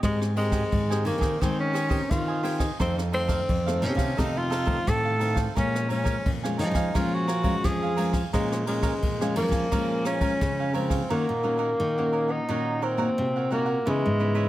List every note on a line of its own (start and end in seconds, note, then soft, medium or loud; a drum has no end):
0.03 0.62 G#2 medium
0.03 0.69 G#3 medium
0.03 0.20 G#3 medium
0.03 0.32 C4 medium
0.03 0.33 G4 medium
0.03 0.33 A#4 medium
0.03 0.35 C5 medium
0.03 0.35 D#5 medium
0.03 0.36 G#5 medium
0.03 kick medium
0.03 cross-stick medium
0.03 ride soft
0.21 cross-stick medium
0.36 1.03 G#3 medium
0.36 0.83 C4 medium
0.36 0.51 G4 soft
0.36 0.84 G4 soft
0.36 0.84 A#4 medium
0.36 0.51 C5 soft
0.36 0.51 D#5 soft
0.36 0.51 G#5 soft
0.36 ride soft
0.52 0.63 G4 medium
0.52 0.63 C5 medium
0.52 0.63 D#5 medium
0.52 0.63 G#5 medium
0.52 kick medium
0.52 cross-stick medium
0.52 ride soft
0.72 1.07 G#2 medium
0.72 1.38 D#3 soft
0.72 kick medium
0.72 ride soft
0.90 1.37 C4 medium
0.90 1.37 G4 medium
0.90 1.37 A#4 medium
0.90 1.04 C5 soft
0.90 1.05 D#5 soft
0.90 1.05 G#5 soft
0.90 cross-stick medium
1.04 1.17 D#3 medium
1.04 1.43 A#3 medium
1.04 1.22 G4 soft
1.04 1.21 C5 soft
1.04 1.20 D#5 soft
1.04 1.19 G#5 medium
1.04 ride soft
1.18 1.35 D#3 medium
1.18 1.39 C5 soft
1.18 1.39 D#5 soft
1.18 1.38 G#5 soft
1.18 kick medium
1.18 cross-stick medium
1.18 ride soft
1.41 2.00 D#3 medium
1.41 2.08 G#3 medium
1.41 1.59 C4 medium
1.41 1.74 C4 medium
1.41 1.75 A#4 medium
1.41 1.73 C5 medium
1.41 1.73 D#5 medium
1.41 1.74 G#5 medium
1.41 kick medium
1.41 cross-stick medium
1.41 ride soft
1.60 2.12 C#4 medium
1.73 1.88 G4 medium
1.73 1.88 C5 medium
1.73 1.89 D#5 medium
1.73 1.89 G#5 medium
1.73 cross-stick medium
1.73 ride soft
1.89 2.38 C4 medium
1.89 2.00 G4 medium
1.89 2.38 G4 medium
1.89 2.39 A#4 medium
1.89 2.01 C5 medium
1.89 2.01 D#5 medium
1.89 2.01 G#5 medium
1.89 kick medium
1.89 ride soft
2.10 2.76 D#3 medium
2.10 2.70 D#3 medium
2.10 2.62 F4 medium
2.10 kick medium
2.10 cross-stick medium
2.10 ride soft
2.28 2.42 C5 soft
2.28 2.43 D#5 soft
2.28 2.43 G#5 soft
2.43 2.65 C4 soft
2.43 2.60 G4 medium
2.43 2.65 G4 medium
2.43 2.65 A#4 medium
2.43 2.59 C5 medium
2.43 2.58 D#5 medium
2.43 2.57 G#5 medium
2.43 ride soft
2.59 2.77 C5 soft
2.59 2.77 D#5 soft
2.59 2.77 G#5 soft
2.59 kick medium
2.59 cross-stick medium
2.59 ride soft
2.79 3.46 F2 medium
2.79 3.39 F2 medium
2.79 3.00 D#3 medium
2.79 3.00 A3 medium
2.79 3.01 C4 medium
2.79 2.96 C4 medium
2.79 3.10 D#4 medium
2.79 3.11 A4 medium
2.79 3.12 C5 medium
2.79 3.12 F5 medium
2.79 kick medium
2.79 cross-stick medium
2.79 ride soft
2.98 cross-stick medium
3.11 3.46 D#3 soft
3.11 3.46 A3 soft
3.11 3.47 C4 medium
3.11 3.85 C4 medium
3.11 3.26 D#4 soft
3.11 3.27 A4 soft
3.11 3.27 C5 soft
3.11 3.27 F5 medium
3.11 ride soft
3.28 3.39 D#4 medium
3.28 3.39 A4 medium
3.28 3.39 C5 medium
3.28 3.39 F5 medium
3.28 kick medium
3.28 cross-stick medium
3.28 ride soft
3.49 3.84 F2 medium
3.49 kick medium
3.49 ride soft
3.66 4.13 D#3 medium
3.66 4.14 A3 medium
3.66 4.14 C4 medium
3.66 3.80 A4 soft
3.66 3.81 C5 soft
3.66 3.82 F5 soft
3.66 cross-stick medium
3.81 3.94 C3 medium
3.81 4.20 C#4 medium
3.81 3.98 D#4 soft
3.81 3.97 A4 soft
3.81 3.96 C5 soft
3.81 3.95 F5 soft
3.81 ride soft
3.95 4.12 C3 medium
3.95 4.16 A4 soft
3.95 4.15 C5 soft
3.95 4.15 F5 soft
3.95 kick medium
3.95 cross-stick medium
3.95 ride soft
4.17 4.84 F2 medium
4.17 4.77 C3 medium
4.17 4.51 D#3 medium
4.17 4.51 A3 medium
4.17 4.51 C4 medium
4.17 4.49 D#4 medium
4.17 4.39 D#4 medium
4.17 4.49 A4 medium
4.17 4.50 C5 medium
4.17 4.50 F5 medium
4.17 kick medium
4.17 cross-stick medium
4.17 ride soft
4.37 4.90 F4 medium
4.50 4.64 D#4 medium
4.50 4.64 A4 medium
4.50 4.65 C5 medium
4.50 4.65 F5 medium
4.50 cross-stick medium
4.50 ride soft
4.65 5.15 D#3 medium
4.65 5.15 A3 medium
4.65 5.16 C4 medium
4.65 4.77 D#4 medium
4.65 4.77 A4 medium
4.65 4.77 C5 medium
4.65 4.77 F5 medium
4.65 kick medium
4.65 ride soft
4.87 5.46 A2 medium
4.87 5.53 C3 medium
4.87 5.40 A4 loud
4.87 kick medium
4.87 cross-stick medium
4.87 ride soft
5.05 5.19 A4 soft
5.05 5.19 C5 soft
5.05 5.20 F5 soft
5.19 5.51 D#3 medium
5.19 5.51 A3 medium
5.19 5.51 C4 medium
5.19 5.37 D#4 medium
5.19 5.35 A4 medium
5.19 5.34 C5 medium
5.19 5.33 F5 medium
5.19 ride soft
5.34 5.54 A4 soft
5.34 5.54 C5 soft
5.34 5.53 F5 soft
5.34 kick medium
5.34 cross-stick medium
5.34 ride soft
5.55 6.16 A#2 medium
5.55 6.23 A#2 medium
5.55 5.86 F3 medium
5.55 5.86 G#3 medium
5.55 5.86 C#4 medium
5.55 5.90 C#4 medium
5.55 5.87 A#4 medium
5.55 5.88 C#5 medium
5.55 5.88 F5 medium
5.55 5.89 G#5 medium
5.55 kick medium
5.55 cross-stick medium
5.55 ride soft
5.75 cross-stick medium
5.88 6.23 F3 soft
5.88 6.23 G#3 medium
5.88 6.23 C#4 medium
5.88 6.31 C#4 medium
5.88 6.03 A#4 soft
5.88 6.04 C#5 soft
5.88 6.04 F5 soft
5.88 6.04 G#5 medium
5.88 ride soft
6.04 6.16 A#4 medium
6.04 6.16 C#5 medium
6.04 6.16 F5 medium
6.04 6.16 G#5 medium
6.04 kick medium
6.04 cross-stick medium
6.04 ride soft
6.26 6.92 F2 soft
6.26 6.61 A#2 medium
6.26 kick medium
6.26 ride soft
6.43 6.90 F3 medium
6.43 6.91 G#3 medium
6.43 6.91 C#4 medium
6.43 6.57 C#5 soft
6.43 6.57 F5 soft
6.43 6.58 G#5 medium
6.43 cross-stick medium
6.57 6.70 F3 medium
6.57 6.98 D#4 medium
6.57 6.75 A#4 soft
6.57 6.75 C#5 soft
6.57 6.74 F5 soft
6.57 6.73 G#5 medium
6.57 ride soft
6.71 6.89 F3 medium
6.71 6.92 G#5 soft
6.71 kick medium
6.71 cross-stick medium
6.71 ride soft
6.75 6.93 C#5 soft
6.75 6.93 F5 soft
6.94 7.61 A#2 medium
6.94 7.54 F3 medium
6.94 7.28 F3 medium
6.94 7.28 G#3 medium
6.94 7.28 C#4 medium
6.94 7.16 F4 medium
6.94 7.26 A#4 medium
6.94 7.27 C#5 medium
6.94 7.27 F5 medium
6.94 7.28 G#5 medium
6.94 kick medium
6.94 cross-stick medium
6.94 ride soft
7.14 7.66 F#4 loud
7.28 7.42 A#4 medium
7.28 7.43 C#5 medium
7.28 7.43 F5 medium
7.28 7.43 G#5 medium
7.28 cross-stick medium
7.28 ride soft
7.43 7.92 F3 medium
7.43 7.92 G#3 medium
7.43 7.92 C#4 medium
7.43 7.54 A#4 medium
7.43 7.55 C#5 medium
7.43 7.55 F5 medium
7.43 7.55 G#5 medium
7.43 kick medium
7.43 ride soft
7.64 8.30 F2 medium
7.64 8.23 F3 loud
7.64 8.17 G#4 medium
7.64 kick medium
7.64 cross-stick medium
7.64 ride soft
7.82 7.96 C#5 soft
7.82 7.97 F5 soft
7.82 7.97 G#5 soft
7.96 8.19 F3 medium
7.96 8.19 G#3 soft
7.96 8.19 C#4 medium
7.96 8.14 A#4 medium
7.96 8.13 C#5 medium
7.96 8.12 F5 medium
7.96 8.12 G#5 medium
7.96 ride soft
8.13 8.31 C#5 soft
8.13 8.31 F5 soft
8.13 8.31 G#5 soft
8.13 kick medium
8.13 cross-stick medium
8.13 ride soft
8.33 8.99 A#2 medium
8.33 8.93 A#2 medium
8.33 8.63 F3 medium
8.33 8.66 G#3 medium
8.33 8.63 G#3 medium
8.33 8.63 C#4 medium
8.33 8.65 A#4 medium
8.33 8.66 C#5 medium
8.33 8.66 F5 medium
8.33 8.66 G#5 medium
8.33 kick medium
8.33 cross-stick medium
8.33 ride soft
8.52 cross-stick medium
8.66 9.00 F3 medium
8.66 9.00 G#3 soft
8.66 9.33 G#3 medium
8.66 9.00 C#4 medium
8.66 8.81 A#4 soft
8.66 8.81 C#5 soft
8.66 8.82 F5 soft
8.66 8.82 G#5 medium
8.66 ride medium
8.82 8.93 A#4 medium
8.82 8.93 C#5 medium
8.82 8.94 F5 medium
8.82 8.94 G#5 medium
8.82 kick medium
8.82 cross-stick medium
8.82 ride soft
9.02 9.68 F2 soft
9.02 9.37 A#2 medium
9.02 kick medium
9.02 ride soft
9.21 9.67 F3 medium
9.21 9.67 G#3 medium
9.21 9.67 C#4 medium
9.21 9.35 C#5 soft
9.21 9.36 F5 soft
9.21 9.36 G#5 soft
9.21 cross-stick medium
9.36 9.47 F3 medium
9.36 10.03 A#3 medium
9.36 9.53 A#4 soft
9.36 9.52 C#5 soft
9.36 9.51 F5 soft
9.36 9.50 G#5 soft
9.36 ride soft
9.49 9.66 F3 medium
9.49 9.69 G#5 soft
9.49 kick medium
9.49 cross-stick medium
9.49 ride soft
9.53 9.70 C#5 soft
9.53 9.70 F5 soft
9.71 10.38 A#2 medium
9.71 10.18 F3 medium
9.71 10.31 F3 medium
9.71 10.19 G#3 soft
9.71 10.19 C#4 medium
9.71 10.04 A#4 medium
9.71 10.04 C#5 medium
9.71 10.05 F5 medium
9.71 10.06 G#5 medium
9.71 kick medium
9.71 cross-stick medium
9.71 ride soft
10.05 10.72 C#4 medium
10.05 10.20 A#4 medium
10.05 10.20 C#5 medium
10.05 10.20 F5 medium
10.05 10.20 G#5 medium
10.05 cross-stick medium
10.05 ride soft
10.21 10.69 F3 medium
10.21 10.69 G#3 medium
10.21 10.69 C#4 medium
10.21 10.32 A#4 medium
10.21 10.32 C#5 medium
10.21 10.32 F5 medium
10.21 10.32 G#5 medium
10.21 kick medium
10.21 ride soft
10.41 11.07 F2 medium
10.41 11.00 C#3 medium
10.41 kick medium
10.41 cross-stick medium
10.41 ride soft
10.59 10.73 C#5 soft
10.59 10.73 F5 soft
10.59 10.74 G#5 soft
10.73 11.04 F3 medium
10.73 11.04 G#3 medium
10.73 11.13 C4 medium
10.73 11.05 C#4 medium
10.73 10.91 A#4 medium
10.73 10.90 C#5 medium
10.73 10.89 F5 medium
10.73 10.88 G#5 medium
10.73 ride soft
10.89 11.08 C#5 soft
10.89 11.08 F5 soft
10.89 11.07 G#5 soft
10.89 kick medium
10.89 cross-stick medium
10.89 ride soft
11.09 11.25 D#3 loud
11.09 11.76 D#3 medium
11.09 11.31 A#3 medium
11.09 12.32 A#3 loud
11.09 11.31 C#4 medium
11.09 11.42 D#4 medium
11.09 11.31 F#4 medium
11.09 11.42 A#4 medium
11.09 11.43 C#5 medium
11.09 11.43 F#5 medium
11.29 11.73 A#2 medium
11.43 11.77 A#3 medium
11.43 11.77 C#4 medium
11.43 11.57 D#4 soft
11.43 11.78 F#4 medium
11.43 11.58 A#4 medium
11.43 11.58 C#5 medium
11.43 11.58 F#5 soft
11.58 11.69 D#4 medium
11.58 11.70 A#4 medium
11.58 11.70 C#5 medium
11.58 11.70 F#5 medium
11.80 12.46 A#2 medium
11.80 12.39 D#3 medium
11.98 12.44 A#3 medium
11.98 12.44 C#4 medium
11.98 12.44 F#4 medium
11.98 12.11 A#4 soft
11.98 12.12 C#5 soft
11.98 12.12 F#5 soft
12.12 12.29 D#4 soft
12.12 12.29 A#4 soft
12.12 12.28 C#5 soft
12.12 12.27 F#5 soft
12.28 12.85 D#4 medium
12.28 12.47 A#4 soft
12.28 12.46 C#5 soft
12.28 12.46 F#5 soft
12.49 13.08 A#2 medium
12.49 13.15 D#3 medium
12.49 12.82 A#3 medium
12.49 12.82 C#4 medium
12.49 12.81 D#4 medium
12.49 12.82 F#4 medium
12.49 12.81 A#4 medium
12.49 12.82 C#5 medium
12.49 12.82 F#5 medium
12.82 13.52 C4 medium
12.82 12.96 D#4 medium
12.82 12.97 A#4 medium
12.82 12.97 C#5 medium
12.82 12.98 F#5 medium
12.97 13.46 A#3 medium
12.97 13.08 D#4 medium
12.97 13.46 F#4 medium
12.97 13.09 A#4 medium
12.97 13.09 C#5 medium
12.97 13.09 F#5 medium
13.18 13.84 A#2 medium
13.18 13.77 C3 medium
13.36 13.50 A#4 soft
13.36 13.51 C#5 soft
13.36 13.51 F#5 soft
13.51 13.84 A#3 medium
13.51 13.85 A#3 medium
13.51 13.68 D#4 medium
13.51 13.84 F#4 medium
13.51 13.66 A#4 medium
13.51 13.66 C#5 medium
13.51 13.65 F#5 medium
13.66 13.85 A#4 soft
13.66 13.85 C#5 soft
13.66 13.84 F#5 soft
13.86 14.02 C#3 loud
13.86 14.49 C#3 medium
13.86 14.16 E3 medium
13.86 14.49 G#3 loud
13.86 14.17 B3 medium
13.86 14.17 D#4 medium
13.86 14.18 E4 medium
13.86 14.19 B4 medium
13.86 14.19 C#5 medium
13.86 14.19 E5 medium
14.06 14.49 G#2 medium
14.19 14.49 E3 medium
14.19 14.49 B3 medium
14.19 14.49 D#4 medium
14.19 14.33 E4 medium
14.19 14.34 B4 soft
14.19 14.34 C#5 medium
14.19 14.34 E5 medium
14.35 14.46 E4 medium
14.35 14.46 B4 medium
14.35 14.46 C#5 medium
14.35 14.47 E5 medium